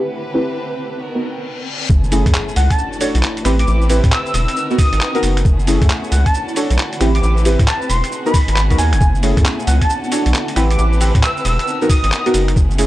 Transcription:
Already playing: violin section C4 E4 G4 B4, ambient pad B4 A5
0.34 synth stab C4 E4 G4 B4
1.01 violin section B3 D#4 F#4 A#4, reverse cymbal
1.15 synth stab B3 D#4 F#4 A#4
1.90 analog synth bass F#1, violin section A3 C#4 E4 G#4, kick, impact, shaker
2.04 shaker
2.12 synth stab A3 C#4 E4 G#4, open hi-hat, shaker
2.26 analog synth bass F#2, finger snap, kick, closed hi-hat, shaker
2.34 clap, shaker
2.48 shaker
2.56 analog synth bass C#2, digital synth lead F#5, open hi-hat, shaker
2.70 digital synth lead A5, finger snap, kick, closed hi-hat, shaker
2.79 violin section D4 F#4 A4, shaker
2.93 shaker
3.01 synth stab D4 F#4 A4 C#5, open hi-hat, shaker
3.11 ambient pad B4 A5
3.15 analog synth bass B1, closed hi-hat, shaker
3.23 clap, shaker
3.37 closed hi-hat, shaker
3.45 analog synth bass A1, violin section C4 E4 G4 B4, synth stab C4 E4 G4 B4, finger snap, open hi-hat, shaker
3.59 digital synth lead D6, closed hi-hat, shaker
3.67 analog synth bass A1, digital synth lead D6, shaker
3.82 shaker
3.90 synth stab C4 E4 G4 B4, open hi-hat, shaker
4.04 analog synth bass A2, finger snap, kick, closed hi-hat, shaker
4.12 digital synth lead E6, clap, shaker
4.26 shaker
4.34 analog synth bass E1, digital synth lead E6, open hi-hat, shaker
4.48 digital synth lead E6, finger snap, closed hi-hat, shaker
4.56 violin section B3 D#4 F#4 A#4, shaker
4.70 synth stab B3 D#4 F#4 A#4, ambient pad F#5, shaker
4.78 digital synth lead D#6, kick, open hi-hat, shaker
4.83 ambient pad G#5
4.93 analog synth bass G#1, closed hi-hat, shaker
5.01 clap, shaker
5.15 synth stab B3 D#4 F#4 A#4, closed hi-hat, shaker
5.23 analog synth bass F#1, open hi-hat, shaker
5.37 finger snap, closed hi-hat, shaker
5.45 analog synth bass F#1, violin section A3 C#4 E4 G#4, kick, shaker
5.59 shaker
5.67 synth stab A3 C#4 E4 G#4, open hi-hat, shaker
5.82 analog synth bass F#2, finger snap, kick, closed hi-hat, shaker
5.90 clap, shaker
6.04 shaker
6.12 analog synth bass C#2, digital synth lead F#5, open hi-hat, shaker
6.26 digital synth lead A5, finger snap, kick, closed hi-hat, shaker
6.34 violin section D4 F#4 A4, shaker
6.48 shaker
6.56 synth stab D4 F#4 A4 C#5, open hi-hat, shaker
6.60 ambient pad B4
6.66 analog synth bass B1, ambient pad A5
6.70 closed hi-hat, shaker
6.78 clap, shaker
6.93 closed hi-hat, shaker
7.01 analog synth bass A1, violin section C4 E4 G4 B4, synth stab C4 E4 G4 B4, finger snap, open hi-hat, shaker
7.15 digital synth lead D6, closed hi-hat, shaker
7.23 analog synth bass A1, digital synth lead D6, shaker
7.37 shaker
7.45 synth stab C4 E4 G4 B4, open hi-hat, shaker
7.59 analog synth bass A2, finger snap, kick, closed hi-hat, shaker
7.67 digital synth lead A5, clap, shaker
7.82 shaker
7.90 analog synth bass E1, digital synth lead C6, open hi-hat, shaker
8.04 finger snap, closed hi-hat, shaker
8.12 violin section G#3 D#4 F#4 G#4, shaker
8.26 synth stab B3 D#4 F#4 A#4, digital synth lead B5, shaker
8.34 kick, open hi-hat, shaker
8.48 analog synth bass G#1, closed hi-hat, shaker
8.53 ambient pad F#5 G#5, clap, shaker
8.70 analog synth bass B1, synth stab B3 D#4 F#4 A#4, kick, closed hi-hat, shaker
8.78 analog synth bass D#2, digital synth lead G#5, open hi-hat, shaker
8.93 analog synth bass F#1, finger snap, closed hi-hat, shaker
9.01 analog synth bass F#1, violin section A3 C#4 E4 G#4, kick, shaker
9.15 shaker
9.23 synth stab A3 C#4 E4 G#4, open hi-hat, shaker
9.37 analog synth bass F#2, finger snap, kick, closed hi-hat, shaker
9.45 clap, shaker
9.59 shaker
9.67 analog synth bass C#2, digital synth lead F#5, open hi-hat, shaker
9.82 digital synth lead A5, finger snap, kick, closed hi-hat, shaker
9.90 violin section D4 F#4 A4, shaker
9.98 ambient pad B4
10.04 shaker
10.12 synth stab D4 F#4 A4 C#5, open hi-hat, shaker
10.22 ambient pad A5
10.26 analog synth bass B1, closed hi-hat, shaker
10.34 clap, shaker
10.48 closed hi-hat, shaker
10.56 analog synth bass A1, synth stab C4 E4 G4 B4, violin section C4 E4 G4 B4, finger snap, open hi-hat, shaker
10.70 digital synth lead D6, closed hi-hat, shaker
10.78 analog synth bass A1, digital synth lead D6, shaker
10.93 shaker
11.01 synth stab C4 E4 G4 B4, open hi-hat, shaker
11.15 analog synth bass A2, finger snap, kick, closed hi-hat, shaker
11.23 digital synth lead E6, clap, shaker
11.37 shaker
11.45 analog synth bass E1, digital synth lead E6, open hi-hat, shaker
11.59 digital synth lead E6, finger snap, closed hi-hat, shaker
11.67 violin section B3 D#4 F#4 A#4, shaker
11.81 synth stab B3 D#4 F#4 A#4, ambient pad F#5, shaker
11.90 digital synth lead D#6, kick, open hi-hat, shaker
12.04 analog synth bass G#1, closed hi-hat, shaker
12.09 ambient pad G#5, clap, shaker
12.26 synth stab B3 D#4 F#4 A#4, closed hi-hat, shaker
12.34 analog synth bass F#1, open hi-hat, shaker
12.48 finger snap, closed hi-hat, shaker
12.56 analog synth bass F#1, violin section A3 C#4 E4 G#4, kick, shaker
12.71 shaker
12.78 synth stab A3 C#4 E4 G#4, open hi-hat, shaker

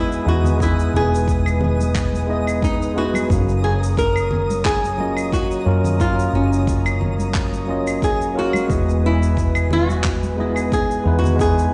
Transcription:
Already playing: fretless electric bass E1, tine electric piano G#3 B3 D#4 E4 D#5, nylon-string guitar E4, analog synth pad B4 G#5, synth texture D#6
0.12 shaker
0.24 fretless electric bass E2, tine electric piano G#3 B3 D#4 E4 B4
0.28 nylon-string guitar F#4
0.45 low conga, shaker
0.56 tine electric piano G#3 B3 D#5
0.60 tine electric piano E4 B4, nylon-string guitar E4, kick, shaker
0.79 shaker
0.94 fretless electric bass E1, nylon-string guitar G#4
1.15 shaker
1.28 kick, shaker
1.46 claves, shaker
1.61 low conga
1.80 high conga, shaker
1.95 kick, clap, shaker
2.13 high conga, shaker
2.27 tine electric piano G#3 B3 D#4 E4 D#5
2.47 claves, shaker
2.62 nylon-string guitar D#4, kick, shaker
2.82 shaker
2.94 tine electric piano G#3 B3 D#4 E4 B4, nylon-string guitar F#4
3.14 high conga, claves, shaker
3.27 fretless electric bass F#1, tine electric piano F#3 A#3 C#4, analog synth pad C#5 A#5, kick
3.31 tine electric piano A#4 F5, shaker
3.49 shaker
3.64 nylon-string guitar G#4
3.83 shaker
3.97 nylon-string guitar A#4, kick, shaker
4.16 claves, shaker
4.31 low conga
4.50 high conga, shaker
4.65 nylon-string guitar G#4, kick, clap, shaker
4.83 high conga, shaker
4.97 tine electric piano F#3 A#3 C#4 F4 D#5, high conga
5.17 claves, shaker
5.32 nylon-string guitar F#4, kick, shaker
5.51 shaker
5.64 fretless electric bass F#2, tine electric piano F#3 A#3 C#4 F4 A#4
5.84 low conga, shaker
5.97 tine electric piano F#3 A#3 C#4, kick, shaker
6.01 nylon-string guitar F4, tine electric piano F4 A#4
6.19 shaker
6.33 fretless electric bass F#1, nylon-string guitar C#4
6.53 shaker
6.67 kick, shaker
6.86 claves, shaker
7.01 low conga
7.18 high conga, shaker
7.34 kick, clap, shaker
7.52 high conga, shaker
7.66 tine electric piano F#3 A#3 C#4 F4
7.70 tine electric piano D#5
7.87 claves, shaker
8.02 nylon-string guitar G#4, kick, shaker
8.21 shaker
8.34 tine electric piano F#3 A#3 C#4 F4 A#4
8.39 nylon-string guitar F#4
8.53 high conga, claves, shaker
8.66 fretless electric bass E1, tine electric piano G#3 B3 D#5, analog synth pad B4 G#5, kick
8.70 tine electric piano E4 B4, shaker
8.89 shaker
9.06 nylon-string guitar E4
9.23 shaker
9.37 kick, shaker
9.55 claves, shaker
9.71 nylon-string guitar F#4, low conga
9.90 high conga, shaker
10.04 kick, clap, shaker
10.23 high conga, shaker
10.36 tine electric piano G#3 B3 D#4 E4 D#5, high conga
10.56 claves, shaker
10.72 nylon-string guitar G#4, kick, shaker
10.91 shaker
11.04 fretless electric bass E2, tine electric piano G#3 B3 D#4 E4 B4
11.19 nylon-string guitar F#4
11.24 low conga, shaker
11.36 tine electric piano G#3 B3 D#4, kick
11.40 tine electric piano E4 B4, nylon-string guitar G#4, shaker
11.58 shaker

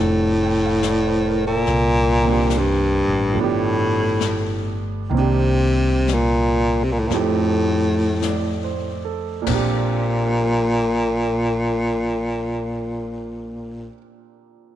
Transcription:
Already playing: baritone saxophone A2, grand piano F3 G3 C4 D4 F4 G4 A4
0.00 upright bass F1
0.44 grand piano G5
0.66 grand piano F5
0.83 grand piano D5, snare, hi-hat pedal
1.07 grand piano C5
1.27 grand piano A#4
1.47 baritone saxophone A#2, grand piano A4
1.66 upright bass C2, brush sweep, snare
2.21 grand piano D#3 A#3
2.26 grand piano C4 D4
2.32 grand piano G4
2.50 snare, hi-hat pedal
2.58 baritone saxophone G2
3.08 upright bass A1
3.32 upright bass G1, grand piano F3 A3, brush sweep
3.37 baritone saxophone A2, grand piano B3 D4
3.44 grand piano G4
4.21 snare, hi-hat pedal
5.09 upright bass C2, grand piano D#3 A#3, brush sweep
5.14 baritone saxophone C3, grand piano C4 D4
5.20 grand piano G4
6.08 snare, hi-hat pedal
6.13 baritone saxophone A#2
6.84 baritone saxophone C3
6.92 baritone saxophone A#2
6.99 baritone saxophone A2
7.08 upright bass F2, baritone saxophone A#2, grand piano F3 A3 C4, brush sweep, snare
7.13 baritone saxophone A2, grand piano D#4 G4
8.22 grand piano D5, snare, hi-hat pedal
8.64 grand piano C5
9.05 grand piano A4
9.42 grand piano A#2 A#3
9.47 upright bass A#1, baritone saxophone A#2, grand piano C4 D4, kick, floor tom, crash
9.54 grand piano G4

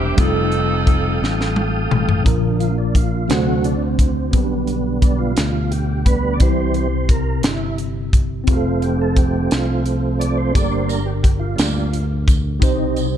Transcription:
Already playing: fingered electric bass E1, tine electric piano C3 G3 A#3 C4 D4 E4, saxophone section D4 E4 G4, tonewheel organ C5 E5 G5 D6
0.16 fingered electric bass F1, tine electric piano G3 C4 D#4, saxophone section C4 A4, tonewheel organ A4 F5 G5 D#6, kick, closed hi-hat
0.20 saxophone section D#4, tine electric piano F4 G4
0.28 tine electric piano A4
0.52 closed hi-hat
0.87 kick, closed hi-hat
1.22 fingered electric bass A1, snare
1.41 snare
1.56 high tom
1.91 fingered electric bass A1, mid tom
2.09 floor tom
2.24 fingered electric bass A#1, tine electric piano A#2 D4 F4 A#4, tonewheel organ D3 F3 A#3, kick, closed hi-hat
2.60 tonewheel organ F4, closed hi-hat
2.78 tonewheel organ D4
2.95 tonewheel organ F4, kick, closed hi-hat
3.28 fingered electric bass D2, tonewheel organ C3 F#3 A3 F#4, tine electric piano D3 A3 C4 D4 F#4 C5, snare, closed hi-hat
3.64 tonewheel organ D4, closed hi-hat
3.82 tonewheel organ C4
3.99 kick, closed hi-hat
4.31 fingered electric bass B1, tine electric piano B2 B3 D4, tonewheel organ D3 G3 B3, kick, closed hi-hat
4.36 tine electric piano G4
4.67 closed hi-hat
5.02 tonewheel organ D4, kick, closed hi-hat
5.19 tonewheel organ F4
5.37 fingered electric bass D2, snare, closed hi-hat
5.71 tonewheel organ G4, closed hi-hat
6.05 tonewheel organ D3 G3 B3 B4, kick, closed hi-hat
6.34 tonewheel organ D5
6.38 fingered electric bass C2, tine electric piano C3 C4 E4, tonewheel organ E3, kick, closed hi-hat
6.42 tonewheel organ G3 C4 C5, tine electric piano G4
6.74 tonewheel organ C5, closed hi-hat
7.09 tonewheel organ A#4, kick, closed hi-hat
7.43 fingered electric bass G1, snare, closed hi-hat
7.48 tonewheel organ E4
7.78 closed hi-hat
8.13 kick, closed hi-hat
8.44 fingered electric bass F1, tine electric piano C4 F4, kick, closed hi-hat
8.49 tonewheel organ F3 A3 C4 F4, tine electric piano G4
8.56 tine electric piano A4
8.82 tonewheel organ G4, closed hi-hat
9.01 tonewheel organ A4
9.16 tonewheel organ G4, kick, closed hi-hat
9.51 fingered electric bass C2, tonewheel organ F4, snare, closed hi-hat
9.86 closed hi-hat
10.19 tonewheel organ D5, closed hi-hat
10.37 tonewheel organ C5
10.52 fingered electric bass G1, tine electric piano G2 D4 G4, tonewheel organ G3 A#3 D4 D5, kick, closed hi-hat, tambourine
10.58 tine electric piano A4
10.64 tine electric piano A#4
10.72 tonewheel organ C5
10.89 tonewheel organ A#4, closed hi-hat, tambourine
11.06 tonewheel organ G4
11.23 tonewheel organ G4, kick, closed hi-hat
11.40 tonewheel organ F4
11.56 fingered electric bass D2, tonewheel organ G3 A#3 D4, snare, closed hi-hat, tambourine
11.93 closed hi-hat
12.28 kick, closed hi-hat, tambourine
12.59 fingered electric bass C2, tine electric piano C3 D#4 G4, tonewheel organ G3 C4 D#4, kick, closed hi-hat, tambourine
12.63 tine electric piano C5
12.96 closed hi-hat, tambourine

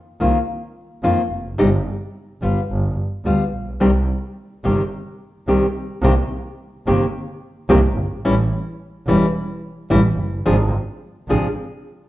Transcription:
0.20 double bass C2, nylon-string guitar D#3 A#3 C4 F4
1.03 double bass F2, nylon-string guitar D#3 A#3 C4 F4
1.31 double bass F1
1.58 double bass G1, nylon-string guitar C3 G3 C4 D#4 G4
2.42 double bass G1, nylon-string guitar G3 B3 F4
2.69 double bass G1
3.25 double bass D2, nylon-string guitar G3 B3 F4
3.52 double bass A#1
3.80 double bass C2, nylon-string guitar C3 D#3 G3 C4 G4
4.64 double bass G1, nylon-string guitar C3 D#3 G3 C4 G4
5.47 double bass C2, nylon-string guitar C3 D#3 G3 C4 G4
6.03 double bass C2, nylon-string guitar C3 D#3 A#3 C4 G4
6.87 double bass G1, nylon-string guitar C3 D#3 A#3 C4 G4
7.69 double bass C2, nylon-string guitar C3 D#3 A#3 C4 G4
7.97 double bass G1
8.25 double bass A1, nylon-string guitar E3 G3 C#4 E4
9.07 double bass E1, nylon-string guitar E3 G3 C#4 E4
9.90 double bass A1, nylon-string guitar E3 G3 C#4 E4
10.18 double bass F#1
10.45 double bass G#1, nylon-string guitar C3 F3 C4 D4 G#4
11.28 double bass G#1, nylon-string guitar C3 F3 C4 D4 G#4

